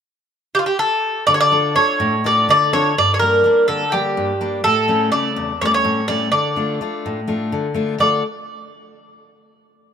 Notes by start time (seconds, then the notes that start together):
0.55 G4
0.59 F4
0.66 G4
0.79 A4
1.27 D3 D5
1.34 C#5
1.40 D5
1.52 D4 F4 A4
1.76 D4 F4 A4 C#5
2.00 A2
2.24 D4 F4 A4 D5
2.49 D3 D5
2.73 D4 F4 A4 C#5
2.98 G2 D5
3.14 C#5
3.19 G3 A#3 D4 A#4
3.44 G3 A#3 D4
3.68 D3 A4
3.92 G3 A#3 D4 G4
4.17 G2
4.41 G3 A#3 D4
4.64 A2 A4
4.88 G3 A3 C#4
5.12 C#3 G3 A3 D5
5.36 E2
5.61 G3 A3 C#4 C#5
5.65 D5
5.74 C#5
5.84 A2
6.08 G3 A3 C#4 D5
6.32 D3 D5
6.56 A3 D4 F4
6.81 A3 D4 F4
7.06 A2
7.28 A3 D4 F4
7.52 D3
7.74 A3 D4 F4
7.99 D3 A3 D4 F4 A4 D5